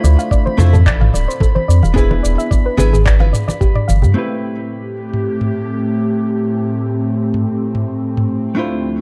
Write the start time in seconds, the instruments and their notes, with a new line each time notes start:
Already playing: hollow-body jazz guitar A3 D4 E4 F4 C5, synth texture B5
0.04 analog synth bass D2, synth arpeggio sound D5, muted conga, shaker
0.19 synth arpeggio sound F5, shaker
0.31 synth arpeggio sound D5, kick, shaker
0.46 synth arpeggio sound C5, muted conga
0.58 analog synth bass F2, hollow-body jazz guitar A3 D4 E4 F4 C5, synth arpeggio sound A4, low conga, shaker
0.73 synth arpeggio sound A4, mid tom, muted conga, high conga, shaker
0.86 analog synth bass A1, synth arpeggio sound D5, kick, clap, shaker
1.01 synth arpeggio sound F5, mid tom, high conga
1.14 analog synth bass D1, synth arpeggio sound D5, muted conga, shaker
1.28 synth arpeggio sound C5, shaker
1.40 synth arpeggio sound A4, kick, muted conga, shaker
1.55 synth arpeggio sound C5, high conga
1.68 analog synth bass F2, synth arpeggio sound D5, shaker
1.83 analog synth bass E1, synth arpeggio sound F5, muted conga, high conga, shaker
1.94 hollow-body jazz guitar B3 D4 E4 G#4, synth arpeggio sound G#4, kick, shaker
1.98 hollow-body jazz guitar B4
2.10 synth arpeggio sound B4, muted conga
2.23 analog synth bass E1, synth arpeggio sound D5, shaker
2.38 synth arpeggio sound E5, shaker
2.51 synth arpeggio sound D5, kick, muted conga, shaker
2.66 synth arpeggio sound B4
2.77 analog synth bass G#1, hollow-body jazz guitar B3 D4 E4 G#4 B4, synth arpeggio sound G#4, muted conga, low conga, shaker
2.93 synth arpeggio sound G#4, mid tom, high conga, shaker
3.05 synth arpeggio sound D5, kick, clap, shaker
3.20 analog synth bass G1, synth arpeggio sound F5, muted conga, high conga
3.33 synth arpeggio sound D5, mid tom, shaker
3.48 synth arpeggio sound D5, muted conga, high conga, shaker
3.61 synth arpeggio sound G4, kick, shaker
3.75 synth arpeggio sound D5, mid tom
3.88 analog synth bass G1, synth arpeggio sound F5, muted conga, high conga, shaker
4.02 analog synth bass G2, synth arpeggio sound G4, low conga, shaker
4.14 analog synth pad A2 A3 C4 G4, hollow-body jazz guitar A3 C4 E4 G4
4.18 hollow-body jazz guitar B4
5.13 mid tom
5.41 mid tom
7.34 mid tom
7.75 mid tom
8.17 mid tom
8.55 analog synth pad D2 D3 F3, hollow-body jazz guitar A3 D4 E4 F4
8.59 hollow-body jazz guitar C5